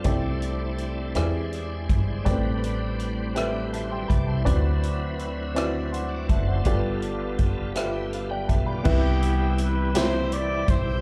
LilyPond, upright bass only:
\new Staff \with { instrumentName = "Upright bass" } { \clef bass \time 6/8 \key c \major \tempo 4. = 54 c,4. e,4 g,,8 | a,,2~ a,,8 c,8 | d,2~ d,8 fis,,8 | g,,2~ g,,8 b,,8 |
c,2~ c,8 b,,8 | }